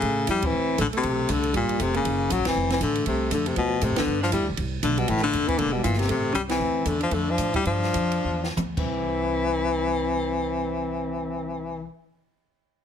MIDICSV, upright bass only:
0, 0, Header, 1, 3, 480
1, 0, Start_track
1, 0, Key_signature, 0, "major"
1, 0, Tempo, 253058
1, 1005, Time_signature, 4, 2, 24, 8
1, 13005, Tempo, 266667
1, 14445, Tempo, 296004
1, 15405, Tempo, 335008
1, 16365, Tempo, 362100
1, 21574, End_track
2, 0, Start_track
2, 0, Title_t, "Upright bass"
2, 0, Program_c, 0, 32
2, 40, Note_on_c, 0, 45, 82
2, 508, Note_off_c, 0, 45, 0
2, 527, Note_on_c, 0, 41, 83
2, 979, Note_off_c, 0, 41, 0
2, 991, Note_on_c, 0, 38, 80
2, 1463, Note_off_c, 0, 38, 0
2, 1487, Note_on_c, 0, 33, 96
2, 1749, Note_off_c, 0, 33, 0
2, 1961, Note_on_c, 0, 35, 80
2, 2428, Note_off_c, 0, 35, 0
2, 2445, Note_on_c, 0, 36, 79
2, 2910, Note_off_c, 0, 36, 0
2, 2924, Note_on_c, 0, 31, 78
2, 3187, Note_off_c, 0, 31, 0
2, 3405, Note_on_c, 0, 29, 85
2, 3870, Note_off_c, 0, 29, 0
2, 3885, Note_on_c, 0, 30, 81
2, 4350, Note_off_c, 0, 30, 0
2, 4366, Note_on_c, 0, 34, 74
2, 4526, Note_on_c, 0, 30, 52
2, 4554, Note_off_c, 0, 34, 0
2, 4671, Note_off_c, 0, 30, 0
2, 4682, Note_on_c, 0, 28, 59
2, 4827, Note_off_c, 0, 28, 0
2, 4838, Note_on_c, 0, 29, 82
2, 5306, Note_off_c, 0, 29, 0
2, 5319, Note_on_c, 0, 33, 89
2, 5787, Note_off_c, 0, 33, 0
2, 5803, Note_on_c, 0, 36, 74
2, 6269, Note_off_c, 0, 36, 0
2, 6287, Note_on_c, 0, 41, 77
2, 6747, Note_off_c, 0, 41, 0
2, 6758, Note_on_c, 0, 38, 77
2, 7227, Note_off_c, 0, 38, 0
2, 7238, Note_on_c, 0, 45, 88
2, 7401, Note_on_c, 0, 41, 49
2, 7429, Note_off_c, 0, 45, 0
2, 7544, Note_off_c, 0, 41, 0
2, 7556, Note_on_c, 0, 38, 60
2, 7700, Note_off_c, 0, 38, 0
2, 7711, Note_on_c, 0, 43, 80
2, 8183, Note_off_c, 0, 43, 0
2, 8194, Note_on_c, 0, 40, 76
2, 8370, Note_off_c, 0, 40, 0
2, 8370, Note_on_c, 0, 38, 54
2, 8520, Note_off_c, 0, 38, 0
2, 8532, Note_on_c, 0, 35, 63
2, 8665, Note_off_c, 0, 35, 0
2, 8676, Note_on_c, 0, 36, 79
2, 9146, Note_off_c, 0, 36, 0
2, 9155, Note_on_c, 0, 35, 84
2, 9625, Note_off_c, 0, 35, 0
2, 9636, Note_on_c, 0, 33, 83
2, 10105, Note_off_c, 0, 33, 0
2, 10118, Note_on_c, 0, 29, 81
2, 10586, Note_off_c, 0, 29, 0
2, 10601, Note_on_c, 0, 28, 72
2, 11068, Note_off_c, 0, 28, 0
2, 11080, Note_on_c, 0, 31, 90
2, 11548, Note_off_c, 0, 31, 0
2, 11558, Note_on_c, 0, 33, 73
2, 12014, Note_off_c, 0, 33, 0
2, 12025, Note_on_c, 0, 36, 80
2, 12494, Note_off_c, 0, 36, 0
2, 12505, Note_on_c, 0, 38, 74
2, 12983, Note_off_c, 0, 38, 0
2, 12998, Note_on_c, 0, 40, 81
2, 13454, Note_off_c, 0, 40, 0
2, 13463, Note_on_c, 0, 41, 71
2, 13932, Note_off_c, 0, 41, 0
2, 13947, Note_on_c, 0, 45, 76
2, 14430, Note_off_c, 0, 45, 0
2, 14445, Note_on_c, 0, 43, 74
2, 14899, Note_off_c, 0, 43, 0
2, 14909, Note_on_c, 0, 41, 84
2, 15383, Note_off_c, 0, 41, 0
2, 15393, Note_on_c, 0, 40, 74
2, 15849, Note_off_c, 0, 40, 0
2, 15859, Note_on_c, 0, 38, 66
2, 16143, Note_off_c, 0, 38, 0
2, 16155, Note_on_c, 0, 36, 73
2, 20246, Note_off_c, 0, 36, 0
2, 21574, End_track
3, 0, Start_track
3, 0, Title_t, "Muted upright bass strokes"
3, 1764, Note_on_c, 9, 29, 36
3, 1954, Note_off_c, 9, 29, 0
3, 3206, Note_on_c, 9, 29, 36
3, 3395, Note_off_c, 9, 29, 0
3, 21574, End_track
0, 0, End_of_file